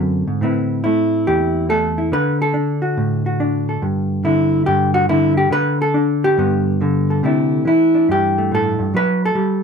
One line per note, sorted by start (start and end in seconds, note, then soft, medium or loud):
0.00 0.27 F#2 medium
0.00 0.84 D3 medium
0.00 0.42 C4 soft
0.00 0.41 D4 soft
0.28 0.42 G#2 medium
0.41 1.27 A2 medium
0.41 2.11 C4 soft
0.41 0.83 E4 soft
0.41 0.83 B4 soft
0.84 1.69 A3 medium
0.84 1.69 E4 medium
1.27 2.13 E2 medium
1.27 1.98 G4 medium
1.69 2.12 A3 medium
1.69 2.12 A4 loud
1.98 2.11 E4 soft
2.12 4.23 D3 medium
2.12 2.41 B4 loud
2.42 3.68 A4 medium
2.54 3.40 D4 medium
2.82 3.25 F#4 soft
2.97 3.80 A2 medium
3.26 3.81 F#4 soft
3.40 4.28 D4 medium
3.69 3.85 A4 soft
3.82 4.67 G2 medium
4.25 5.08 D3 medium
4.25 4.66 E4 medium
4.66 5.50 G2 medium
4.66 4.94 G4 medium
4.94 5.09 F#4 medium
5.09 5.49 D3 medium
5.09 5.37 E4 medium
5.37 5.52 G4 medium
5.51 6.80 D3 medium
5.51 5.80 B4 loud
5.82 6.38 A4 medium
5.94 6.35 D4 medium
6.24 7.24 G4 medium
6.38 7.22 G2 medium
6.38 7.22 B3 soft
6.81 7.65 D3 medium
7.10 7.22 A4 soft
7.23 7.66 C3 medium
7.23 8.38 A3 soft
7.23 7.93 D4 soft
7.23 7.66 E4 soft
7.65 8.92 E3 medium
7.65 8.10 E4 medium
7.95 8.93 D4 soft
8.09 8.78 G2 medium
8.09 8.53 G4 medium
8.38 9.00 A3 soft
8.52 8.80 A2 medium
8.52 8.96 A4 loud
8.79 8.94 G2 medium
8.94 9.35 F#3 medium
8.94 9.23 B4 loud
9.25 9.63 A4 medium
9.35 9.63 G3 medium